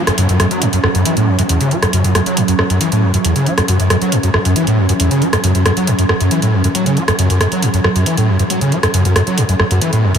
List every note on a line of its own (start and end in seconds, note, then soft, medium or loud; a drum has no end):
0.00 10.18 F#3 medium
0.00 10.18 C#4 medium
0.00 downlifter medium
0.07 0.11 F#2 medium
0.07 cross-stick medium
0.07 closed hi-hat medium
0.18 0.27 F#2 loud
0.18 closed hi-hat medium
0.29 0.38 F#2 medium
0.29 closed hi-hat medium
0.40 0.46 F#2 loud
0.40 cross-stick medium
0.40 closed hi-hat medium
0.51 0.63 F#3 medium
0.51 closed hi-hat medium
0.62 0.68 F#2 medium
0.62 closed hi-hat medium
0.73 0.79 F#2 medium
0.73 closed hi-hat medium
0.84 0.87 F#2 loud
0.84 cross-stick medium
0.95 1.04 F#2 loud
0.95 closed hi-hat medium
1.05 1.15 E3 loud
1.05 closed hi-hat medium
1.17 1.29 A2 medium
1.17 closed hi-hat medium
1.27 1.37 F#2 medium
1.39 1.42 F#2 loud
1.39 closed hi-hat medium
1.49 1.59 E2 medium
1.49 closed hi-hat medium
1.61 1.73 C#3 loud
1.61 closed hi-hat medium
1.71 1.77 F#3 loud
1.71 closed hi-hat soft
1.82 1.86 F#2 medium
1.82 cross-stick medium
1.82 closed hi-hat medium
1.93 2.02 F#2 loud
1.93 closed hi-hat medium
2.04 2.13 F#2 medium
2.04 closed hi-hat medium
2.15 2.21 F#2 loud
2.15 cross-stick medium
2.15 closed hi-hat medium
2.26 2.38 F#3 medium
2.26 closed hi-hat medium
2.37 2.43 F#2 medium
2.37 closed hi-hat medium
2.48 2.54 F#2 medium
2.48 closed hi-hat medium
2.59 2.63 F#2 loud
2.59 cross-stick medium
2.70 2.79 F#2 medium
2.70 closed hi-hat soft
2.81 2.90 E3 loud
2.81 closed hi-hat medium
2.92 3.04 A2 medium
2.92 closed hi-hat medium
3.03 3.12 F#2 medium
3.14 3.17 F#2 loud
3.14 closed hi-hat medium
3.25 3.34 E2 medium
3.25 closed hi-hat medium
3.36 3.48 C#3 loud
3.36 closed hi-hat medium
3.46 3.53 F#3 loud
3.46 closed hi-hat soft
3.58 3.61 F#2 medium
3.58 cross-stick medium
3.58 closed hi-hat medium
3.68 3.78 F#2 loud
3.68 closed hi-hat medium
3.80 3.88 F#2 medium
3.80 closed hi-hat soft
3.90 3.96 F#2 loud
3.90 cross-stick medium
3.90 closed hi-hat medium
4.01 4.14 F#3 medium
4.01 closed hi-hat soft
4.12 4.18 F#2 medium
4.12 closed hi-hat medium
4.23 4.29 F#2 medium
4.23 closed hi-hat soft
4.34 4.38 F#2 loud
4.34 cross-stick medium
4.45 4.54 F#2 medium
4.45 closed hi-hat soft
4.56 4.65 E3 loud
4.56 closed hi-hat medium
4.67 4.79 A2 medium
4.67 closed hi-hat soft
4.78 4.87 F#2 medium
4.89 4.93 F#2 loud
4.89 closed hi-hat medium
5.00 5.09 E2 medium
5.00 closed hi-hat medium
5.11 5.23 C#3 medium
5.11 closed hi-hat soft
5.22 5.28 F#3 loud
5.22 closed hi-hat soft
5.33 5.36 F#2 medium
5.33 cross-stick medium
5.33 closed hi-hat medium
5.44 5.53 F#2 loud
5.44 closed hi-hat medium
5.55 5.64 F#2 medium
5.55 closed hi-hat soft
5.66 5.72 F#2 loud
5.66 cross-stick loud
5.66 closed hi-hat medium
5.77 5.89 F#3 medium
5.77 closed hi-hat soft
5.87 5.94 F#2 medium
5.87 closed hi-hat medium
5.99 6.04 F#2 medium
5.99 closed hi-hat soft
6.09 6.13 F#2 loud
6.09 cross-stick loud
6.21 6.29 F#2 loud
6.21 closed hi-hat soft
6.31 6.40 E3 loud
6.31 closed hi-hat medium
6.42 6.55 A2 medium
6.42 closed hi-hat soft
6.53 6.62 F#2 medium
6.64 6.68 F#2 loud
6.64 closed hi-hat medium
6.75 6.84 F#3 medium
6.75 closed hi-hat medium
6.86 6.98 C#3 loud
6.86 closed hi-hat soft
6.97 7.03 F#3 loud
6.97 closed hi-hat soft
7.08 7.12 F#2 medium
7.08 cross-stick medium
7.08 closed hi-hat soft
7.19 7.28 F#2 loud
7.19 closed hi-hat medium
7.30 7.39 F#2 medium
7.30 closed hi-hat soft
7.41 7.47 F#2 loud
7.41 cross-stick loud
7.41 closed hi-hat medium
7.52 7.64 F#3 medium
7.52 closed hi-hat soft
7.62 7.69 F#2 medium
7.62 closed hi-hat medium
7.74 7.80 F#2 medium
7.74 closed hi-hat soft
7.84 7.88 F#2 loud
7.84 cross-stick loud
7.96 8.04 F#2 loud
7.96 closed hi-hat soft
8.06 8.16 E3 loud
8.06 closed hi-hat medium
8.17 8.30 A2 medium
8.17 closed hi-hat soft
8.28 8.37 F#2 medium
8.39 8.43 F#2 loud
8.39 closed hi-hat soft
8.50 8.59 F#3 medium
8.50 closed hi-hat medium
8.61 8.73 C#3 loud
8.61 closed hi-hat soft
8.72 8.78 F#3 loud
8.72 closed hi-hat soft
8.83 8.87 F#2 medium
8.83 cross-stick medium
8.83 closed hi-hat soft
8.94 9.03 F#2 loud
8.94 closed hi-hat medium
8.94 riser medium
9.05 9.14 F#2 medium
9.05 closed hi-hat soft
9.16 9.22 F#2 loud
9.16 cross-stick medium
9.16 closed hi-hat medium
9.27 9.39 F#3 medium
9.27 closed hi-hat soft
9.38 9.44 F#2 medium
9.38 closed hi-hat medium
9.49 9.55 F#2 medium
9.49 closed hi-hat soft
9.59 9.63 F#2 loud
9.59 cross-stick medium
9.71 9.80 F#2 loud
9.71 closed hi-hat medium
9.81 9.91 E3 loud
9.81 closed hi-hat medium
9.93 10.05 A2 medium
9.93 closed hi-hat soft
10.03 10.13 F#2 medium
10.15 10.18 F#2 loud
10.15 closed hi-hat medium